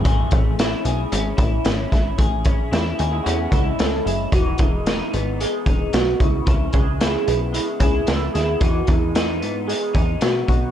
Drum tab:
HH |xxxxxxxx|xxxxxxxx|xxxxxxxx|xxxxxxxx|
SD |--o---oo|--o---o-|--o---o-|--o---oo|
BD |oo---o-o|oo---o--|oo---o-o|oo---o--|

HH |xxxxxxxx|
SD |--o---o-|
BD |oo---o-o|